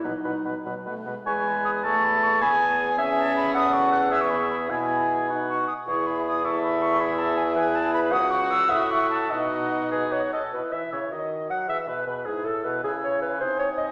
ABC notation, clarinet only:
X:1
M:6/8
L:1/16
Q:3/8=104
K:E
V:1 name="Clarinet"
D6 z6 | g6 a6 | g6 e6 | f6 e6 |
g8- g z3 | z6 e6- | e6 B6 | f6 e6 |
d6 B2 c2 d2 | B2 e2 c2 d4 f2 | e2 B2 B2 G2 A2 B2 | G2 c2 B2 ^B2 c2 d2 |]